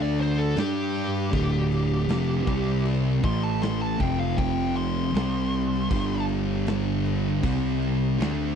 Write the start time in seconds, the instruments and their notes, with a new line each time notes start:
Already playing: picked electric bass D2, distorted electric guitar D3 A3 D4, tonewheel organ D4 A4 A5
0.02 lead electric guitar D5
0.18 lead electric guitar C5, snare, crash
0.38 lead electric guitar A4
0.55 picked electric bass G2, distorted electric guitar G3 D4 G4, tonewheel organ G4, snare, crash
0.60 lead electric guitar G4
0.95 crash
1.30 picked electric bass D1, distorted electric guitar D2 A2 D3, tonewheel organ F5, kick, crash
1.72 crash
2.07 picked electric bass F1, distorted electric guitar F2 C3 F3, snare, crash
2.46 picked electric bass C2, distorted electric guitar C3 G3 C4, tonewheel organ C4 G4 G5, kick, crash
2.68 snare
2.86 crash
3.21 picked electric bass A1, distorted electric guitar A2 E3 A3, tonewheel organ E4 A4 A5, lead electric guitar C6, kick, crash
3.43 lead electric guitar A5
3.62 lead electric guitar C6, snare, crash
3.82 lead electric guitar A5
3.98 picked electric bass F1, distorted electric guitar F2 C3 F3, tonewheel organ C4 F4 F5, lead electric guitar G5, kick, crash
4.19 lead electric guitar F5
4.37 lead electric guitar G5, kick, crash
4.77 lead electric guitar C6, crash
5.11 picked electric bass C2, distorted electric guitar C3 G3 C4, tonewheel organ C4 G4 G5, crash
5.17 snare
5.53 crash
5.74 snare
5.89 picked electric bass G1, distorted electric guitar G2 D3 G3, tonewheel organ D4 G5, kick, crash
6.29 crash
6.67 snare, crash
7.06 crash
7.43 picked electric bass C2, distorted electric guitar C3 G3 C4, tonewheel organ C4, kick, crash
7.82 crash
8.19 picked electric bass D2, distorted electric guitar D3 A3 D4, snare, crash